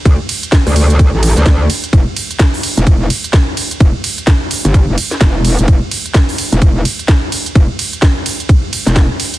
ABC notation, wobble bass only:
X:1
M:4/4
L:1/16
Q:"Swing 16ths" 1/4=128
K:Em
V:1 name="Wobble bass" clef=bass
D,, z4 D,,4 A,,,2 D,, D,,2 z2 | E,,, z6 E,,, E,,,2 z6 | E,,, z6 G,,,2 E,,, z2 E,,,3 E,,, | E,,, z6 E,,, E,,,2 z6 |
E,,, z8 z2 E,,,2 z3 |]